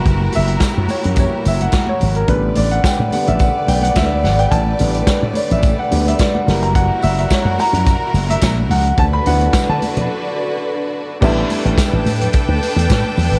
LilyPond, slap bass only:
\new Staff \with { instrumentName = "Slap bass" } { \clef bass \time 4/4 \key a \mixolydian \tempo 4 = 108 fis,,8 fis,,8 r16 fis,16 r16 fis,8 r16 fis,,8 r8 gis,,8 | a,,8 a,,8 r16 a,16 r16 a,,8 r16 b,,8 d,8 gis,,8 | a,,8 a,,8 r16 a,16 r16 a,,8 r16 d,8 r8 fis,,8~ | fis,,8 fis,,8 r16 fis,16 r16 fis,8 r16 fis,,8 ais,,8 cis,8 |
d,8 d,8 r16 d16 r16 b,16 r2 | a,,8 r16 a,,16 r16 a,,16 a,8 r16 d,16 r16 e,16 r8 e,16 gis,,16 | }